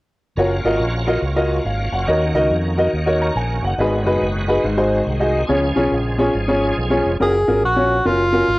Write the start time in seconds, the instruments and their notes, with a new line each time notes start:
0.36 fingered electric bass F#1, tonewheel organ A#3 C#4 F4 F#4, upright piano F4 F#4 A#4 C#5
0.64 fingered electric bass G#1, upright piano F4 F#4 A#4 D#5
0.80 fingered electric bass A#1
1.07 upright piano F4 F#4 A#4 D#5
1.22 fingered electric bass C#2
1.36 upright piano F4 F#4 A#4 D#5
1.65 fingered electric bass G#1, upright piano F5
1.92 fingered electric bass F#1, upright piano F#5
2.07 fingered electric bass D#2, tonewheel organ D#3, upright piano D#3 D#4 F#4 A#4 C#5
2.34 fingered electric bass C#2, upright piano D#4 F#4 A#4 D#5
2.50 fingered electric bass F2
2.78 upright piano D#4 F#4 A#4 D#5
2.93 fingered electric bass D#2
3.06 upright piano D#4 F#4 A#4 C#5
3.22 upright piano A#5
3.35 fingered electric bass A#1, upright piano G#5
3.62 fingered electric bass F#1, upright piano F#5
3.78 fingered electric bass G#1, upright piano G#2 D#4 F#4 G#4 B4, tonewheel organ G#3 B3
4.05 fingered electric bass F#1, upright piano D#4 F#4 G#4 B4
4.21 fingered electric bass F#1
4.48 upright piano D#4 F#4 G#4 B4
4.62 fingered electric bass G#1, upright piano G#2, tonewheel organ C4
4.77 upright piano D#4 F#4 G#4 C5
5.07 fingered electric bass C2
5.20 upright piano D#4 F#4 G#4 D#5
5.47 fingered electric bass C#2, upright piano C#3 C#4 F4 G#4 C#5, tonewheel organ F3 G#3 C#4 G#4
5.76 fingered electric bass B1, upright piano C#4 F4 G#4 C#5
5.92 fingered electric bass A#1
6.18 upright piano C#4 F4 G#4 C#5
6.35 fingered electric bass G#1
6.48 upright piano C#4 F4 G#4 C#5
6.77 fingered electric bass B1
6.90 upright piano C#4 F4 G#4 C#5
7.04 fingered electric bass F1
7.20 fingered electric bass F#1, upright piano C#4 F4 F#4 A#4, tenor saxophone G#4
7.48 fingered electric bass G#1, upright piano C#4 F4 F#4 A#4
7.63 fingered electric bass A#1, tenor saxophone F#4
7.76 upright piano C#4 F4 F#4 C#5
8.05 fingered electric bass F#1, upright piano C#4 F4 F#4 A#4, tenor saxophone F4
8.32 upright piano C#4 F4 F#4 A#4
8.48 fingered electric bass G#1